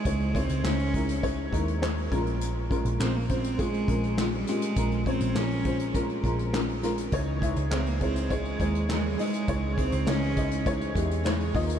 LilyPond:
<<
  \new Staff \with { instrumentName = "Steel-string acoustic guitar" } { \time 4/4 \key des \lydian \tempo 4 = 102 r1 | r1 | r1 | <des fes aes ees' aes'>8 <aes ees' aes'>8 <des fes aes ees' aes'>8 <aes ees' aes'>8 <fes aes ees' aes'>8 <aes ees' aes'>8 <des fes aes ees' aes'>8 <aes ees' aes'>8 |
<des fes aes ees' aes'>8 <aes ees' aes'>8 <des fes aes ees' aes'>8 <aes ees' aes'>8 <fes aes ees' aes'>8 <aes ees' aes'>8 <des fes aes ees' aes'>8 <bes ees' f'>8 | }
  \new Staff \with { instrumentName = "Upright piano" } { \time 4/4 \key des \lydian <aes ees' fes' des''>8 <aes ees' fes' des''>8 <aes ees' fes' c''>8 <aes ees' fes' bes'>8 <aes ees' fes' des''>8 <aes ees' fes' bes'>8 <aes ees' fes' des''>8 <aes des' f' bes'>8~ | <aes des' f' bes'>8 <aes des' f' bes'>8 <aes des' f' bes'>8 <aes des' f' c''>8 <aes des' f' aes'>8 <aes des' f' bes'>8 <aes des' f' g'>8 <aes des' f' g'>8 | <aes des' f' bes'>8 <aes des' f' des''>8 <aes des' f' bes'>8 <aes des' f' c''>8 <aes des' f' bes'>8 <aes des' f' bes'>8 <aes des' f' bes'>8 <aes des' f' bes'>8 | <aes ees' fes' des''>8 <aes ees' fes' fes''>8 <aes ees' fes' des''>8 <aes ees' fes' des''>8 <aes ees' fes' des''>8 <aes ees' fes' des''>8 <aes ees' fes' bes'>8 <aes ees' fes' ees''>8 |
<aes ees' fes' des''>8 <aes ees' fes' c''>8 <aes ees' fes' des''>8 <aes ees' fes' ees''>8 <aes ees' fes' des''>8 <aes ees' fes' g'>8 <aes ees' fes' des''>8 <bes ees' f' ees''>8 | }
  \new Staff \with { instrumentName = "Upright piano" } { \clef bass \time 4/4 \key des \lydian des4. r2 bes,8~ | bes,4 r2 r8 bes,8~ | bes,4 r2. | des4. r2 r8 |
des4. r2 ees8 | }
  \new Staff \with { instrumentName = "Cello" } { \time 4/4 \key des \lydian aes8 c'8 des'4 r2 | r4 c'16 bes16 c'8 aes4 aes16 g16 aes8~ | aes8 c'8 des'4 r2 | r4 c'16 bes16 c'8 aes4 aes16 g16 aes8~ |
aes8 c'8 des'4 r2 | }
  \new Staff \with { instrumentName = "Picked electric bass" } { \clef bass \time 4/4 \key des \lydian des,8. des,16 des,4. ees,4 bes,,8~ | bes,,8. bes,,16 bes,,4. bes,,4 r8 | bes,,8. bes,,16 bes,,4. bes,,4. | des,8. des,16 des,4. ees,4 r8 |
des,8. des,16 des,4. fes,4 ees,8 | }
  \new DrumStaff \with { instrumentName = "Drums" } \drummode { \time 4/4 <hh bd>16 hh16 <hh bd>16 hh16 <hc sn>16 hh16 <hh bd>16 hh16 <hh bd>8 <hh bd>16 hh16 <hc sn>16 hh16 <hh bd sn>16 hh16 | hh8 <hh bd>16 hh16 <hc sn>8 <hh bd>16 hh16 <hh bd>16 hh16 <hh bd>16 hh16 <hc sn>16 hh16 <hh sn>16 hh16 | <hh bd>16 hh16 <hh bd>16 hh16 <hc sn>16 hh16 <hh bd>16 hh16 <hh bd>16 hh16 <hh bd>16 hh16 <hc sn>16 hh16 <hh sn>16 hh16 | <hh bd>8 <hh bd>16 hh16 <hc sn>16 hh16 <hh bd>16 hh16 <hh bd>16 hh16 <hh bd>16 hh16 <hc sn>8 <hho sn>16 hh16 |
<hh bd>8 <hh bd>16 hh16 <hc sn>16 hh16 <hh bd>16 hh16 <hh bd>16 hh16 <hh bd>16 hh16 <hc sn>16 hh16 <hho bd sn>16 hh16 | }
>>